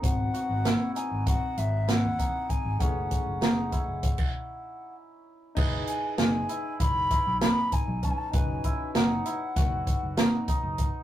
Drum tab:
CC |------------------|---------x--------|x-----------------|------------------|
HH |x-x-x-x-x-x-x-x-x-|x-x-x-x-x---------|--x-x-x-x-x-x-x-x-|x-x-x-x-x-x-x-x-x-|
SD |----o-------o-----|----o-------------|----o-------o-----|----o---o---o-----|
BD |o-------o-----o-o-|o-o---o-oo--------|o-------o-o---o-o-|o-o-----o-o---o-o-|